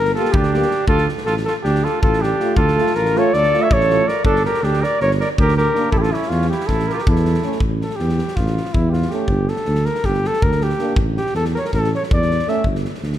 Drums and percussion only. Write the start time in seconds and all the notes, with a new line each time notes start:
0.05 snare
0.16 snare
0.25 snare
0.34 kick
0.43 snare
0.54 snare
0.62 snare
0.71 snare
0.88 kick
0.98 snare
1.09 snare
1.18 snare
1.27 snare
1.37 snare
1.47 snare
1.65 snare
1.75 snare
1.86 snare
2.03 kick
2.14 snare
2.24 snare
2.40 snare
2.56 kick
2.68 snare
2.78 snare
2.87 snare
2.95 snare
3.06 snare
3.16 snare
3.34 snare
3.43 snare
3.54 snare
3.71 kick
3.81 snare
3.90 snare
4.09 snare
4.25 kick
4.36 snare
4.45 snare
4.54 snare
4.64 snare
4.74 snare
4.84 snare
5.00 snare
5.11 snare
5.21 snare
5.38 kick
5.49 snare
5.58 snare
5.75 snare
5.92 kick
6.04 snare
6.14 snare
6.22 snare
6.31 snare
6.42 snare
6.52 snare
6.61 snare
6.69 kick, snare
6.79 snare
6.90 snare
6.99 snare
7.07 kick
7.16 snare
7.25 snare
7.34 snare
7.43 snare
7.52 snare
7.60 kick
7.82 snare
7.90 snare
7.99 snare
8.09 snare
8.19 snare
8.28 snare
8.37 kick, snare
8.47 snare
8.57 snare
8.66 snare
8.74 kick
8.94 snare
9.02 snare
9.11 snare
9.28 kick
9.48 snare
9.56 snare
9.65 snare
9.75 snare
9.85 snare
9.95 snare
10.04 kick, snare
10.14 snare
10.25 snare
10.33 snare
10.42 kick
10.52 snare
10.61 snare
10.70 snare
10.79 snare
10.96 kick
11.17 snare
11.26 snare
11.35 snare
11.45 snare
11.56 snare
11.65 snare
11.73 kick, snare
11.84 snare
11.94 snare
12.03 snare
12.11 kick
12.22 snare
12.31 snare
12.39 snare
12.48 snare
12.64 kick
12.75 snare
12.85 snare
12.95 snare
13.03 snare
13.13 snare